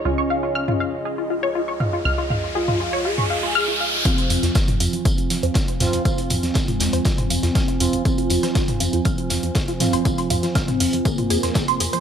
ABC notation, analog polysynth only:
X:1
M:4/4
L:1/8
Q:1/4=120
K:Fm
V:1 name="Analog polysynth"
z8 | z8 | [F,CF]6- [F,CF] [F,CF] | [F,CF]6- [F,CF] [F,CF] |
[F,CF]6- [F,CF] [F,CF] | z8 |]